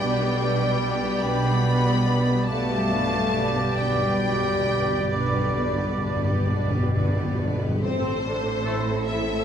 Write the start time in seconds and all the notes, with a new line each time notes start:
Already playing: G4 D5
0.00 B1 B2 G3 B3 D4 B4 D5 G5
0.21 G3 B3 G4 B4
0.41 B3 D4 B4 D5
0.62 G3 B3 G4 B4
0.82 B3 D4 B4 D5
1.03 G3 B3 G4 B4
1.22 B1 B2 B3 D4 B4 D5 G5 B5
1.44 G3 B3 G4 B4
1.63 B3 D4 B4 D5
1.85 G3 B3 G4 B4
2.06 B3 D4 B4 D5
2.26 G3 B3 G4 B4
2.47 B1 G2 B2 A3 B3 D4 G4 B4 D5 F5 A5
2.55 G2
2.63 G2
2.68 G2 G3 B3 G4 B4
2.78 G2
2.86 G2 B4 D5
2.92 G2 B3 D4
3.01 G2
3.09 G2 G4 B4
3.14 G2 G3 B3
3.24 G2
3.33 G2 B3 D4 B4 D5
3.40 G2
3.48 G2
3.56 G2 G3 B3 G4 B4
3.65 G2
3.72 G2
3.77 B1 B2 G3 B3 D4 B4 D5 G5
3.81 G2
3.89 G2
3.96 G2 G4 B4
4.01 G2 G3 B3
4.12 G2
4.20 G2 B3 D4 B4 D5
4.26 G2
4.34 G2
4.43 G2 G3 B3 G4 B4
4.49 G2
4.58 G2
4.65 G2 B3 D4 B4 D5
4.73 G2
4.81 G2
4.87 G2 G3 B3 G4 B4
4.98 G2
5.06 G2 B4
5.10 B1 G2 B2 D3 B3 D4 B4 D5
5.22 G2
5.30 G2 G3 B3 G4 B4
5.38 G2
5.46 G2
5.55 G2 B3 D4 B4 D5
5.65 G2
5.73 G2
5.77 G3 B3 G4 B4
5.82 G2
5.90 G2
5.98 G2 B3 D4 D5
6.02 B4
6.07 G2
6.16 G2
6.24 G2 G3 B3 G4 B4
6.32 G2
6.40 G2
6.48 B1 G2 B2 B3 D4 B4 D5
6.57 G2
6.65 G2
6.71 G2 G3 B3 G4 B4
6.80 G2
6.88 G2
6.93 G2 B3 D4 B4 D5
7.04 G2
7.13 G2 G3 B3 G4 B4
7.21 G2
7.30 G2
7.38 G2 B3 D4 B4 D5
7.45 G2
7.53 G2
7.61 G2 G3 B3 G4 B4
7.68 G2
7.81 A1 A2 A3 C4 A4 C5
8.26 D4
8.65 A3 E4 A4 E6
9.07 E4 E5